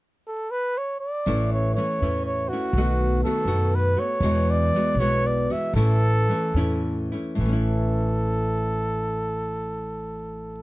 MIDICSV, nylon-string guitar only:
0, 0, Header, 1, 2, 480
1, 0, Start_track
1, 0, Key_signature, 3, "major"
1, 0, Tempo, 490196
1, 1249, Time_signature, 6, 3, 24, 8
1, 4127, Tempo, 507185
1, 5567, Tempo, 547445
1, 9850, End_track
2, 0, Start_track
2, 0, Title_t, "Nylon-string guitar"
2, 0, Program_c, 0, 24
2, 1234, Note_on_c, 0, 45, 61
2, 1242, Note_on_c, 0, 61, 66
2, 1244, Note_on_c, 0, 57, 70
2, 1245, Note_on_c, 0, 52, 57
2, 1251, Note_on_c, 0, 64, 67
2, 1716, Note_off_c, 0, 52, 0
2, 1727, Note_on_c, 0, 52, 44
2, 1729, Note_off_c, 0, 61, 0
2, 1732, Note_off_c, 0, 64, 0
2, 1735, Note_off_c, 0, 45, 0
2, 1738, Note_off_c, 0, 57, 0
2, 1741, Note_on_c, 0, 61, 55
2, 1742, Note_on_c, 0, 57, 49
2, 1744, Note_on_c, 0, 64, 53
2, 1966, Note_off_c, 0, 52, 0
2, 1970, Note_off_c, 0, 64, 0
2, 1973, Note_off_c, 0, 57, 0
2, 1973, Note_off_c, 0, 61, 0
2, 1982, Note_on_c, 0, 64, 53
2, 1986, Note_on_c, 0, 52, 51
2, 1987, Note_on_c, 0, 57, 48
2, 1988, Note_on_c, 0, 61, 55
2, 1990, Note_on_c, 0, 45, 37
2, 2464, Note_off_c, 0, 64, 0
2, 2467, Note_off_c, 0, 61, 0
2, 2469, Note_off_c, 0, 52, 0
2, 2470, Note_off_c, 0, 57, 0
2, 2471, Note_off_c, 0, 45, 0
2, 2476, Note_on_c, 0, 64, 40
2, 2479, Note_on_c, 0, 61, 33
2, 2487, Note_on_c, 0, 57, 34
2, 2698, Note_off_c, 0, 64, 0
2, 2699, Note_off_c, 0, 61, 0
2, 2703, Note_off_c, 0, 57, 0
2, 2713, Note_on_c, 0, 47, 56
2, 2714, Note_on_c, 0, 51, 49
2, 2714, Note_on_c, 0, 57, 62
2, 2719, Note_on_c, 0, 59, 63
2, 2723, Note_on_c, 0, 66, 76
2, 3170, Note_off_c, 0, 51, 0
2, 3179, Note_off_c, 0, 57, 0
2, 3181, Note_on_c, 0, 51, 50
2, 3187, Note_off_c, 0, 47, 0
2, 3190, Note_off_c, 0, 66, 0
2, 3191, Note_on_c, 0, 57, 54
2, 3192, Note_off_c, 0, 59, 0
2, 3194, Note_on_c, 0, 66, 54
2, 3196, Note_on_c, 0, 59, 54
2, 3390, Note_off_c, 0, 57, 0
2, 3390, Note_off_c, 0, 59, 0
2, 3392, Note_off_c, 0, 66, 0
2, 3395, Note_off_c, 0, 51, 0
2, 3401, Note_on_c, 0, 57, 53
2, 3402, Note_on_c, 0, 59, 45
2, 3404, Note_on_c, 0, 66, 59
2, 3407, Note_on_c, 0, 51, 52
2, 3412, Note_on_c, 0, 47, 40
2, 3872, Note_off_c, 0, 66, 0
2, 3875, Note_off_c, 0, 59, 0
2, 3881, Note_off_c, 0, 57, 0
2, 3884, Note_on_c, 0, 66, 47
2, 3887, Note_on_c, 0, 59, 38
2, 3893, Note_on_c, 0, 57, 42
2, 3895, Note_off_c, 0, 51, 0
2, 3897, Note_off_c, 0, 47, 0
2, 4122, Note_off_c, 0, 66, 0
2, 4123, Note_off_c, 0, 59, 0
2, 4126, Note_off_c, 0, 57, 0
2, 4135, Note_on_c, 0, 40, 61
2, 4135, Note_on_c, 0, 47, 67
2, 4138, Note_on_c, 0, 52, 79
2, 4141, Note_on_c, 0, 56, 72
2, 4148, Note_on_c, 0, 59, 66
2, 4148, Note_on_c, 0, 66, 63
2, 4615, Note_off_c, 0, 40, 0
2, 4615, Note_off_c, 0, 47, 0
2, 4618, Note_off_c, 0, 56, 0
2, 4621, Note_off_c, 0, 66, 0
2, 4622, Note_off_c, 0, 59, 0
2, 4628, Note_off_c, 0, 52, 0
2, 4631, Note_on_c, 0, 52, 48
2, 4639, Note_on_c, 0, 56, 51
2, 4641, Note_on_c, 0, 59, 60
2, 4644, Note_on_c, 0, 66, 61
2, 4850, Note_off_c, 0, 52, 0
2, 4854, Note_off_c, 0, 56, 0
2, 4855, Note_off_c, 0, 59, 0
2, 4856, Note_off_c, 0, 66, 0
2, 4869, Note_on_c, 0, 66, 61
2, 4874, Note_on_c, 0, 56, 54
2, 4875, Note_on_c, 0, 59, 58
2, 4878, Note_on_c, 0, 52, 57
2, 4881, Note_on_c, 0, 40, 43
2, 4883, Note_on_c, 0, 47, 47
2, 5332, Note_off_c, 0, 66, 0
2, 5344, Note_on_c, 0, 66, 48
2, 5346, Note_off_c, 0, 59, 0
2, 5349, Note_off_c, 0, 56, 0
2, 5353, Note_off_c, 0, 40, 0
2, 5353, Note_off_c, 0, 52, 0
2, 5354, Note_off_c, 0, 47, 0
2, 5357, Note_on_c, 0, 52, 39
2, 5357, Note_on_c, 0, 59, 33
2, 5364, Note_on_c, 0, 56, 40
2, 5572, Note_off_c, 0, 66, 0
2, 5575, Note_off_c, 0, 52, 0
2, 5578, Note_off_c, 0, 59, 0
2, 5581, Note_off_c, 0, 56, 0
2, 5581, Note_on_c, 0, 45, 55
2, 5585, Note_on_c, 0, 52, 67
2, 5587, Note_on_c, 0, 61, 67
2, 5591, Note_on_c, 0, 57, 75
2, 5591, Note_on_c, 0, 64, 76
2, 6046, Note_off_c, 0, 45, 0
2, 6050, Note_off_c, 0, 52, 0
2, 6053, Note_on_c, 0, 52, 54
2, 6056, Note_off_c, 0, 57, 0
2, 6060, Note_on_c, 0, 57, 52
2, 6063, Note_off_c, 0, 61, 0
2, 6064, Note_off_c, 0, 64, 0
2, 6066, Note_on_c, 0, 61, 43
2, 6068, Note_on_c, 0, 64, 46
2, 6274, Note_off_c, 0, 52, 0
2, 6277, Note_off_c, 0, 57, 0
2, 6280, Note_off_c, 0, 61, 0
2, 6281, Note_off_c, 0, 64, 0
2, 6292, Note_on_c, 0, 61, 64
2, 6299, Note_on_c, 0, 52, 52
2, 6301, Note_on_c, 0, 64, 61
2, 6306, Note_on_c, 0, 57, 56
2, 6308, Note_on_c, 0, 45, 51
2, 6775, Note_off_c, 0, 64, 0
2, 6779, Note_on_c, 0, 64, 40
2, 6783, Note_off_c, 0, 45, 0
2, 6787, Note_off_c, 0, 61, 0
2, 6791, Note_on_c, 0, 61, 38
2, 6794, Note_off_c, 0, 57, 0
2, 6798, Note_on_c, 0, 57, 36
2, 6983, Note_on_c, 0, 45, 61
2, 7007, Note_off_c, 0, 64, 0
2, 7013, Note_off_c, 0, 61, 0
2, 7017, Note_off_c, 0, 57, 0
2, 7019, Note_off_c, 0, 52, 0
2, 7022, Note_on_c, 0, 52, 58
2, 7070, Note_on_c, 0, 57, 61
2, 7100, Note_on_c, 0, 61, 66
2, 7136, Note_on_c, 0, 64, 62
2, 9850, Note_off_c, 0, 45, 0
2, 9850, Note_off_c, 0, 52, 0
2, 9850, Note_off_c, 0, 57, 0
2, 9850, Note_off_c, 0, 61, 0
2, 9850, Note_off_c, 0, 64, 0
2, 9850, End_track
0, 0, End_of_file